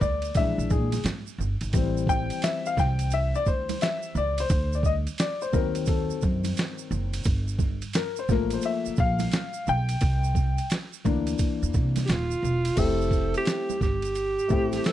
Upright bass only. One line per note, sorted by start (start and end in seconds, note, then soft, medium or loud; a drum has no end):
0.01 0.29 D2 loud
0.35 0.53 A#1 medium
0.58 0.72 A#1 medium
0.71 0.98 A#2 loud
1.05 1.23 G#2 medium
1.38 1.57 G1 medium
1.61 1.71 G#1 medium
1.74 2.28 A1 loud
2.77 3.32 C2 loud
3.46 3.74 D2 medium
4.15 4.42 C#2 medium
4.50 5.05 D2 loud
5.53 6.08 D#2 loud
6.23 6.50 F#2 loud
6.91 7.18 F#1 medium
7.26 7.81 G1 loud
8.29 8.56 A1 medium
8.86 muted upright bass stroke soft
8.98 9.25 A#1 loud
9.68 9.95 B1 loud
10.02 10.56 C2 loud
11.06 11.33 D2 loud
11.63 11.76 E2 medium
11.75 12.02 C3 loud
12.09 12.36 D#1 loud
12.43 12.70 E1 medium
12.77 13.32 F1 loud
13.81 14.36 G1 medium
14.50 14.77 A1 medium